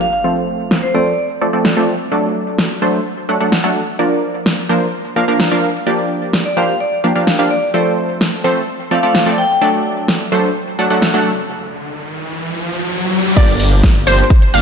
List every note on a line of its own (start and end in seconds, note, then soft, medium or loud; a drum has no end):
0.00 0.08 F5 medium
0.00 impact medium
0.13 0.20 F5 medium
0.24 0.92 F3 medium
0.24 0.92 A3 medium
0.24 0.92 C4 medium
0.24 0.92 A4 medium
0.24 0.92 C5 medium
0.71 snare loud
0.83 0.92 C5 medium
0.94 1.12 F3 medium
0.94 1.12 A3 medium
0.94 1.12 C4 medium
0.94 1.12 A4 medium
0.94 1.12 C5 medium
0.94 1.02 D5 medium
1.06 1.14 D5 medium
1.41 1.50 F3 medium
1.41 1.50 A3 medium
1.41 1.50 C4 medium
1.41 1.50 A4 medium
1.41 1.50 D5 medium
1.53 1.74 F3 medium
1.53 1.74 A3 medium
1.53 1.74 C4 medium
1.53 1.74 A4 medium
1.53 1.74 D5 medium
1.65 snare loud
1.77 1.94 F3 medium
1.77 1.94 A3 medium
1.77 1.94 C4 medium
1.77 1.94 A4 medium
1.77 1.94 D5 loud
2.12 2.79 F#3 medium
2.12 2.79 A3 medium
2.12 2.79 D4 medium
2.12 2.79 A4 medium
2.12 2.79 D5 medium
2.59 snare loud
2.82 3.00 F#3 medium
2.82 3.00 A3 medium
2.82 3.00 D4 medium
2.82 3.00 A4 medium
2.82 2.99 C5 medium
3.29 3.38 F#3 medium
3.29 3.38 A3 medium
3.29 3.38 D4 medium
3.29 3.38 A4 medium
3.29 3.38 F#5 medium
3.40 3.61 F#3 medium
3.40 3.61 A3 medium
3.40 3.61 D4 medium
3.40 3.61 A4 medium
3.40 3.61 F#5 medium
3.52 snare loud
3.64 3.81 F#3 medium
3.64 3.81 A3 medium
3.64 3.81 D4 medium
3.64 3.81 A4 medium
3.64 3.81 F#5 loud
3.99 4.67 F3 medium
3.99 4.67 A#3 medium
3.99 4.67 D4 medium
3.99 4.67 A#4 medium
3.99 4.67 D5 medium
4.46 snare loud
4.69 4.87 F3 medium
4.69 4.87 A#3 medium
4.69 4.87 D4 medium
4.69 4.87 A#4 medium
4.69 4.87 C5 medium
5.16 5.25 F3 medium
5.16 5.25 A#3 medium
5.16 5.25 D4 medium
5.16 5.25 A#4 medium
5.16 5.25 F5 medium
5.28 5.49 F3 medium
5.28 5.49 A#3 medium
5.28 5.49 D4 medium
5.28 5.49 A#4 medium
5.28 5.49 F5 medium
5.40 snare loud
5.51 5.69 F3 medium
5.51 5.69 A#3 medium
5.51 5.69 D4 medium
5.51 5.69 A#4 medium
5.51 5.69 F5 loud
5.87 6.54 F3 medium
5.87 6.54 A#3 medium
5.87 6.54 D4 medium
5.87 6.54 G4 medium
5.87 6.54 D5 medium
6.33 snare loud
6.45 6.55 D5 medium
6.57 6.74 F3 medium
6.57 6.74 A#3 medium
6.57 6.74 D4 medium
6.57 6.74 G4 medium
6.57 6.74 C5 medium
6.57 6.71 F5 medium
6.80 6.95 D5 medium
7.04 7.13 F3 medium
7.04 7.13 A#3 medium
7.04 7.13 D4 medium
7.04 7.13 G4 medium
7.04 7.13 F5 medium
7.16 7.36 F3 medium
7.16 7.36 A#3 medium
7.16 7.36 D4 medium
7.16 7.36 G4 medium
7.16 7.36 F5 medium
7.27 snare loud
7.39 7.57 F3 medium
7.39 7.56 A#3 medium
7.39 7.57 D4 medium
7.39 7.56 G4 medium
7.39 7.57 F5 loud
7.51 7.65 D5 medium
7.74 8.42 F3 medium
7.74 8.42 A3 medium
7.74 8.42 C4 medium
7.74 8.42 A4 medium
7.74 8.42 C5 medium
7.74 7.88 D5 medium
8.21 snare loud
8.44 8.62 F3 medium
8.44 8.62 A3 medium
8.44 8.62 C4 medium
8.44 8.62 A4 medium
8.44 8.62 C5 medium
8.91 9.00 F3 medium
8.91 9.00 A3 medium
8.91 9.00 C4 medium
8.91 9.00 A4 medium
8.91 9.00 D5 medium
8.91 8.99 F5 medium
9.03 9.24 F3 medium
9.03 9.24 A3 medium
9.03 9.24 C4 medium
9.03 9.24 A4 medium
9.03 9.24 D5 medium
9.03 9.10 F5 medium
9.15 snare loud
9.26 9.44 F3 medium
9.26 9.44 A3 medium
9.26 9.44 C4 medium
9.26 9.44 A4 medium
9.26 9.44 D5 loud
9.38 9.66 G5 medium
9.62 10.29 F#3 medium
9.62 10.29 A3 medium
9.62 10.29 D4 medium
9.62 10.29 A4 medium
9.62 10.29 D5 medium
9.62 riser medium
10.08 snare loud
10.32 10.49 F#3 medium
10.32 10.49 A3 medium
10.32 10.49 D4 medium
10.32 10.49 A4 medium
10.32 10.49 C5 medium
10.79 10.88 F#3 medium
10.79 10.88 A3 medium
10.79 10.88 D4 medium
10.79 10.88 A4 medium
10.79 10.88 F#5 medium
10.90 11.11 F#3 medium
10.90 11.11 A3 medium
10.90 11.11 D4 medium
10.90 11.11 A4 medium
10.90 11.11 F#5 medium
11.02 snare loud
11.14 11.31 F#3 medium
11.14 11.31 A3 medium
11.14 11.31 D4 medium
11.14 11.31 A4 medium
11.14 11.31 F#5 loud
13.36 14.05 G1 loud
13.36 14.04 F3 medium
13.36 14.04 A#3 medium
13.36 14.04 D4 medium
13.36 14.04 G4 medium
13.36 14.04 D5 medium
13.36 kick loud
13.36 closed hi-hat loud
13.36 crash loud
13.36 shaker medium
13.48 closed hi-hat soft
13.48 shaker soft
13.60 open hi-hat loud
13.72 closed hi-hat soft
13.72 shaker medium
13.83 kick loud
13.83 snare loud
13.83 closed hi-hat loud
13.83 shaker medium
13.95 closed hi-hat soft
13.95 shaker soft
14.07 14.22 G1 loud
14.07 14.24 F3 medium
14.07 14.24 A#3 medium
14.07 14.24 D4 medium
14.07 14.24 G4 medium
14.07 14.24 C5 loud
14.07 14.24 C5 medium
14.07 open hi-hat medium
14.19 closed hi-hat soft
14.19 shaker medium
14.30 kick loud
14.30 closed hi-hat loud
14.30 shaker medium
14.42 closed hi-hat soft
14.42 shaker soft
14.54 14.62 G1 loud
14.54 14.62 F3 medium
14.54 14.62 A#3 medium
14.54 14.62 D4 medium
14.54 14.62 G4 medium
14.54 14.62 F5 medium
14.54 open hi-hat loud